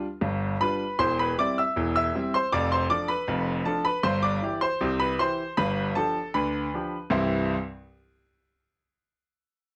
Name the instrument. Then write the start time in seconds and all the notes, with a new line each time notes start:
grand piano
Already playing: B4
0.21 G1 G2
0.61 G3 D4 F4 B4 B5
0.99 E1 E2 C5 C6
1.19 B4 B5
1.39 G3 C4 E4 D5 D6
1.58 E5 E6
1.76 E1 E2
1.96 E5 E6
2.15 G3 C4 E4
2.34 C5 C6
2.52 F1 F2 D5 D6
2.72 C5 C6
2.90 F3 D4 A4 D5 D6
3.08 B4 B5
3.28 F1 F2
3.65 F3 D4 A4 A5
3.85 B4 B5
4.03 G1 G2 C5 C6
4.23 D5 D6
4.42 E3 E4 G4
4.61 C5 C6
4.81 C2 C3
5.00 B4 B5
5.19 E3 E4 G4 C5 C6
5.57 G1 G2 B4 B5
5.95 F3 D4 G4 A4 A5
6.34 D2 D3 B4 B5
6.74 F3 D4 G4
7.10 C2 G2 E3 G3 C4 E4 C6